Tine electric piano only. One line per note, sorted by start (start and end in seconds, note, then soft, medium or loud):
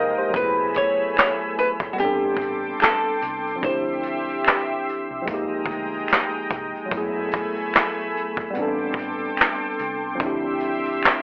0.00 0.28 F3 medium
0.00 0.30 G#3 medium
0.00 0.31 A#3 medium
0.00 0.33 D#4 medium
0.00 0.19 G4 medium
0.00 0.36 A#4 medium
0.00 0.18 C5 medium
0.00 0.35 D#5 medium
0.00 0.35 F5 medium
0.18 0.57 G4 soft
0.18 0.57 C5 medium
0.30 1.93 F#3 medium
0.30 1.94 A3 medium
0.35 1.95 B3 medium
0.35 1.97 E4 medium
0.41 1.99 G#4 medium
1.93 3.57 G3 medium
1.93 3.58 B3 medium
1.99 3.57 C4 medium
1.99 3.60 D4 medium
2.05 3.63 A4 medium
3.56 5.20 F3 medium
3.56 5.22 C4 medium
3.61 5.23 D4 medium
3.61 5.25 E4 medium
3.67 5.26 G4 medium
5.22 6.86 F3 medium
5.22 6.87 G#3 medium
5.28 6.89 A#3 medium
5.28 6.90 D#4 medium
5.34 6.92 G4 medium
6.85 8.49 F#3 medium
6.85 8.51 A3 medium
6.91 8.52 B3 medium
6.91 8.54 E4 medium
6.97 8.55 G#4 medium
8.50 10.14 G3 medium
8.50 10.16 B3 medium
8.56 10.17 C4 medium
8.56 10.19 D4 medium
8.62 10.20 A4 medium
10.16 11.22 F3 medium
10.16 11.22 C4 medium
10.21 11.22 D4 medium
10.21 11.22 E4 medium
10.27 11.22 G4 medium